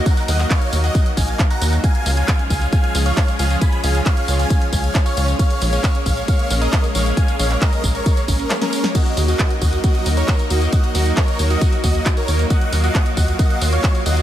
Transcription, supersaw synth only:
\new Staff \with { instrumentName = "Supersaw synth" } { \time 4/4 \key ees \minor \tempo 4 = 135 <ges'' bes''>16 r16 <ees'' ges''>16 r16 <des'' f''>8 r16 <ees'' ges''>8 r16 <f'' aes''>8 r16 <ges'' bes''>8 r16 | <f'' aes''>8 r16 <f'' aes''>8 r16 <f'' aes''>16 r16 <f'' aes''>8 r16 <des'' f''>8 r16 <f'' aes''>16 r16 | <aes'' ces'''>16 r16 <f'' aes''>16 r16 <des'' f''>8 r16 <f'' aes''>8 r16 <f'' aes''>8 r16 <des'' f''>8 r16 | <des'' f''>8 r16 <des'' f''>8 r16 <des'' f''>16 r16 <des'' f''>8 r16 <bes' ees''>8 r16 <des'' f''>16 r16 |
<f'' aes''>16 r16 <des'' f''>16 r16 <bes' ees''>8 r16 <bes' des''>8 r16 <des' bes'>8 r16 <des' bes'>8 r16 | <ges' ees''>8 r16 <ges' ees''>8 r16 <ges' ees''>16 r16 <ges' ees''>8 r16 <bes' des''>8 r16 <ges' ees''>16 r16 | <ees'' ges''>16 r16 <ges' ees''>16 r16 <bes' des''>8 r16 <ges' ees''>8 r16 <ges' ees''>8 r16 <bes' des''>8 r16 | <ees'' ges''>8 r16 <ees'' ges''>8 r16 <ees'' ges''>16 r16 <ees'' ges''>8 r16 <des'' f''>8 r16 <ees'' ges''>16 r16 | }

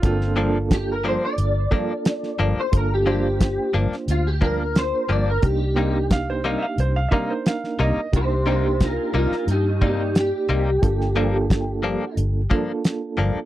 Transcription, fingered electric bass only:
\new Staff \with { instrumentName = "Fingered electric bass" } { \clef bass \time 4/4 \key g \minor \tempo 4 = 89 g,,2 g,,8 r4 g,,16 r16 | g,,4. g,,16 r16 d,4. g,,8 | c,2 c,8 r4 c,16 r16 | c,4. c,16 r16 g,4. c,8 |
g,,2 g,,8 r4 g,,16 r16 | }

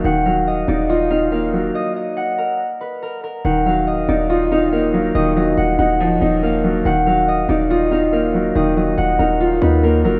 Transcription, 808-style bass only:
\new Staff \with { instrumentName = "808-style bass" } { \clef bass \time 4/4 \key ees \minor \tempo 4 = 141 ees,,4. ees,,2~ ees,,8 | r1 | ees,,4 d,,16 ees,,16 ees,,2~ ees,,8 | ees,,4 ees,,8 ees,,4 ees,,4. |
ees,,4. ees,,2~ ees,,8 | ees,,4 ees,,8 ees,,4 ees,4 ges,,8 | }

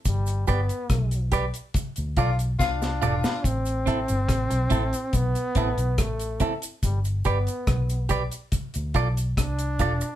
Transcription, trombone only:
\new Staff \with { instrumentName = "Trombone" } { \time 4/4 \key a \minor \tempo 4 = 71 g8 b4 r4. d'4 | c'2 b4 a8 r8 | g8 b4 r4. d'4 | }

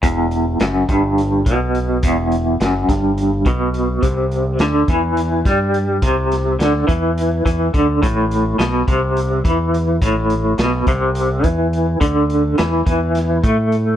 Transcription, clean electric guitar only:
\new Staff \with { instrumentName = "Clean electric guitar" } { \clef bass \time 7/8 \key e \minor \tempo 4 = 105 e,4 fis,8 g,4 b,4 | e,4 fis,8 g,4 b,4 | c4 d8 e4 g4 | c4 d8 e4 e8 d8 |
a,4 b,8 c4 e4 | a,4 b,8 c4 e4 | d4 e8 e4 a4 | }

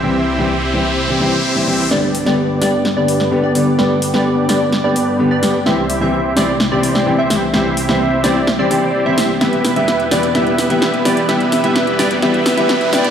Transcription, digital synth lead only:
\new Staff \with { instrumentName = "Digital synth lead" } { \time 4/4 \key g \major \tempo 4 = 128 r1 | d''8. d''8. d''16 r8 d''4 d''8 r16 | d''8. d''8. d''16 r8 d''4 d''8 r16 | e''8. e''8. d''16 r8 d''4 e''8 r16 |
e''8. e''8. d''16 r8 d''4 e''8 r16 | e''8. e''8. d''16 r16 e''8. e''8. d''16 r16 | e''8. e''8. d''16 r16 e''8. e''8. d''16 r16 | }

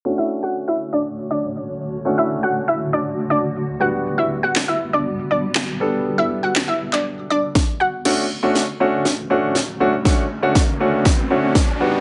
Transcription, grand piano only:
\new Staff \with { instrumentName = "Grand piano" } { \time 4/4 \key d \major \tempo 4 = 120 <a cis' d' fis'>1 | <a cis' d' fis'>2.~ <a cis' d' fis'>8 <g b d' fis'>8~ | <g b d' fis'>2.~ <g b d' fis'>8 <g b d' a'>8~ | <g b d' a'>2. r4 |
<a cis' d' fis'>16 r8 <a cis' d' fis'>16 r8 <a cis' d' fis'>8 r8 <a cis' d' fis'>8 r8 <a cis' d' fis'>16 r16 | <a cis' d' fis'>16 r8 <a cis' d' fis'>16 r8 <a cis' d' fis'>8 r8 <a cis' d' fis'>8 r8 <g b d' fis'>8 | }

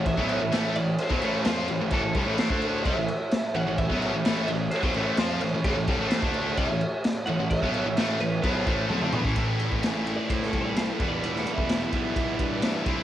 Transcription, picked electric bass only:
\new Staff \with { instrumentName = "Picked electric bass" } { \clef bass \time 4/4 \key a \dorian \tempo 4 = 129 a,,16 b,,8 a,,16 a,,8 a,,8 r16 b,,16 a,,8 f,8 a,,16 a,,16 | a,,16 a,,16 c,16 a,,8 d,8. c,16 a,,16 r4 a,,16 a,,16~ | a,,16 b,,8 a,,16 a,,8 a,,8 r16 b,,16 a,,8 f,8 a,,16 a,,16 | a,,16 a,,16 c,16 a,,8 d,8. c,16 a,,16 r4 a,,16 a,,16~ |
a,,16 b,,8 a,,16 a,,8 a,,8 b,,8 a,,8 d,16 f,16 e,16 a,,16 | a,,8. a,,4~ a,,16 a,8 c,4 e,,8~ | e,,8. e,,8. b,,8 b,,8 g,4 c,8 | }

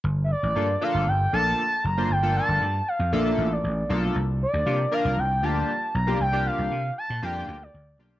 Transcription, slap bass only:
\new Staff \with { instrumentName = "Slap bass" } { \clef bass \time 4/4 \key g \dorian \tempo 4 = 117 g,,8. a,,16 g,8 r16 g,,16 g,,8 bes,,8 r8 fis,,8 | g,,8. g,,16 g,8 r16 f,16 bes,,8 a,,8 a,,8 b,,8 | c,8. d,16 c8 r16 c,16 c,8 d,8 r8 b,,8 | c,8. c,16 c8 r16 bes,16 f,8 d,8 d,8 b,,8 | }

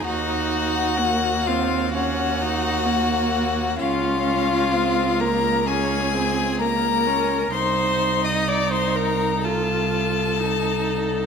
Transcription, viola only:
\new Staff \with { instrumentName = "Viola" } { \time 4/4 \key bes \minor \tempo 4 = 64 ees'4 bes8 c'8 des'8 ees'8 bes4 | des'4 c'8 bes8 des'8 c'8 bes8 des'8 | ees'2 f'4 ees'4 | }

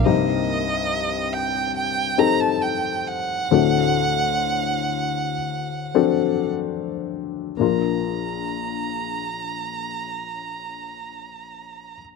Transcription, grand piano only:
<<
  \new Staff \with { instrumentName = "Grand piano" } { \time 4/4 \key bes \major \tempo 4 = 60 <c' ees' g' bes'>2 r8 <c' ees' g' a'>4. | <c' d' fis' a'>2 r8 <c' d' fis' a'>4. | <bes d' f' bes'>1 | }
  \new Staff \with { instrumentName = "Grand piano" } { \clef bass \time 4/4 \key bes \major <c, g,>1 | <d, a,>1 | bes,,1 | }
>>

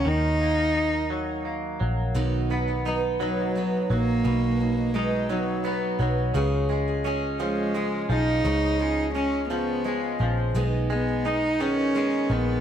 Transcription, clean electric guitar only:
\new Staff \with { instrumentName = "Clean electric guitar" } { \clef bass \time 6/8 \key des \mixolydian \tempo 4. = 57 <ees ges bes ees'>8 bes8 ees'8 ges8 bes8 ges8 | r8 b8 dis'8 fis4 fis8 | b,4 dis'8 fis8 b8 fis8 | des8 aes8 des'8 f8 aes8 f8 |
des8 aes8 des'8 f8 aes8 f8 | r8 aes8 ees'8 ees8 aes8 ees8 | }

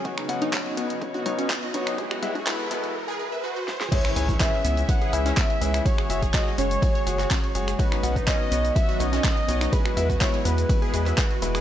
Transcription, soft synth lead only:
\new Staff \with { instrumentName = "Soft synth lead" } { \time 4/4 \key cis \minor \tempo 4 = 124 r1 | r1 | cis''4 e''4 fis''8 e''4. | cis''4 dis''8 cis''2 r8 |
b'4 dis''4 e''8 dis''4. | b'4 cis''8 b'2 r8 | }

